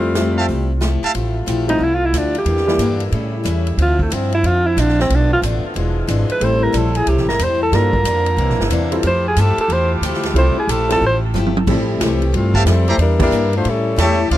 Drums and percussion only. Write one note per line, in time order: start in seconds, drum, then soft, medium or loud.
0.15 snare medium
0.15 closed hi-hat medium
0.48 open hi-hat soft
0.81 snare medium
0.81 closed hi-hat medium
1.03 open hi-hat soft
1.15 ride medium
1.47 hi-hat pedal medium
1.47 ride medium
1.69 ride medium
2.14 hi-hat pedal medium
2.14 ride medium
2.35 ride soft
2.46 ride medium
2.57 snare soft
2.68 snare soft
2.79 hi-hat pedal medium
2.79 ride medium
3.00 ride soft
3.12 ride medium
3.45 hi-hat pedal medium
3.45 ride medium
3.67 ride soft
3.78 ride medium
3.99 kick medium
4.11 hi-hat pedal medium
4.11 ride medium
4.32 ride soft
4.44 ride medium
4.78 hi-hat pedal medium
4.78 ride medium
4.88 snare soft
4.99 snare soft
5.10 ride medium
5.43 hi-hat pedal medium
5.43 ride medium
5.76 ride medium
6.08 hi-hat pedal medium
6.08 ride medium
6.29 ride medium
6.41 ride medium
6.74 hi-hat pedal medium
6.74 ride medium
6.95 ride soft
7.07 ride medium
7.17 snare soft
7.29 snare soft
7.39 hi-hat pedal medium
7.39 ride medium
7.73 snare soft
7.73 ride medium
7.93 kick medium
8.05 hi-hat pedal medium
8.05 ride medium
8.26 ride medium
8.38 ride medium
8.49 snare soft
8.60 snare medium
8.70 hi-hat pedal medium
8.70 ride medium
8.92 ride medium
9.03 ride medium
9.36 hi-hat pedal medium
9.36 ride medium
9.58 ride soft
9.70 ride medium
10.03 hi-hat pedal medium
10.03 ride medium
10.14 snare soft
10.23 snare soft
10.23 ride medium
10.36 ride medium
10.69 hi-hat pedal medium
10.69 ride medium
10.90 snare soft
10.90 ride medium
11.35 hi-hat pedal medium
11.35 high tom medium
11.46 high tom medium
11.57 high tom medium
11.67 kick medium
11.67 crash medium
12.01 snare medium
12.01 hi-hat pedal medium
12.01 ride medium
12.22 ride soft
12.34 ride medium
12.54 kick medium
12.66 snare medium
12.66 hi-hat pedal medium
12.66 ride medium
12.88 ride medium
12.99 ride medium
13.20 kick medium
13.20 crash medium
13.31 hi-hat pedal medium
13.53 ride soft
13.65 ride medium
13.98 snare medium
13.98 hi-hat pedal medium
13.98 ride medium
14.31 ride medium